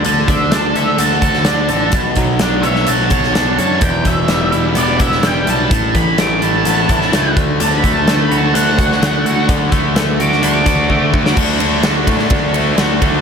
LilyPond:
<<
  \new Staff \with { instrumentName = "Lead electric guitar" } { \time 4/4 \key d \major \tempo 4 = 127 a''8 e''8 a''8 e''8 a''8 a''4.~ | a''8 r4 e''8 a''4. a''8 | g''8 e''4 r8 d''8 e''8 g''8 a''8~ | a''8 b''8 d'''8 a''2 r8 |
\tuplet 3/2 { a''8 b''8 a''8 a''8 b''8 a''8 } fis''2 | r4. d'''8 d'''2 | r1 | }
  \new Staff \with { instrumentName = "Distorted electric guitar" } { \time 4/4 \key d \major d8 d'8 d'8 a'8 fis'8 a'8 d'8 a'8 | b,8 fis8 d'8 cis''8 fis'8 cis''8 d'8 cis''8 | e,8 b,8 g8 e'8 b8 e'8 g8 e'8 | a,8 e8 a8 e'8 b8 e'8 a8 d8 |
d8 a8 a8 fis'8 d'8 fis'8 a8 fis'8 | d8 a8 a8 fis'8 d'8 fis'8 a8 fis'8 | <d a d' fis'>8 <a d' fis'>8 <d a d' fis'>4. <a d' fis'>8 <d a d' fis'>8 <a d' fis'>8 | }
  \new Staff \with { instrumentName = "Picked electric bass" } { \clef bass \time 4/4 \key d \major d,8 d,8 d,8 d,8 d,4 d,8 a,,8 | b,,8 b,,8 b,,8 b,,8 b,,8 b,,8 b,,8 fis,8 | e,,8 e,,8 e,,8 e,,8 e,,4 e,,8 b,,8 | a,,8 a,,8 a,,8 a,,8 a,,8 a,,8 cis,8 d,8 |
d,8 d,8 d,8 d,8 d,4 d,8 d,8 | d,8 d,8 d,8 d,8 d,8 d,8 d,8 d,8 | d,8 d,8 d,8 a,8 d,4 d,8 d,8 | }
  \new DrumStaff \with { instrumentName = "Drums" } \drummode { \time 4/4 hh8 <hh bd>8 <hh sn>8 hh8 hh8 <hh bd>16 sn16 <hh sn>8 hh8 | <hh bd>8 <hh bd>8 <hh sn>8 hh16 sn16 hh8 <hh bd>16 sn16 <hh sn>8 hh8 | <hh bd>8 <hh bd>8 <hh sn>8 hh8 hh8 <hh bd>16 sn16 <hh sn>8 hh8 | <hh bd>8 <hh bd>8 <hh sn>8 hh8 hh8 <hh bd>16 sn16 <hh sn>8 <hh bd>8 |
hh8 <hh bd>8 <hh sn>8 hh8 hh8 <hh bd>16 sn16 <hh sn>8 hh8 | <hh bd>8 <hh bd>8 <hh sn>8 hh16 sn16 hh8 <hh bd>8 bd8 bd16 sn16 | <cymc bd>8 cymr8 <cymr sn>8 <bd cymr>16 sn16 <bd cymr>8 cymr8 <cymr sn>8 <bd cymr>8 | }
>>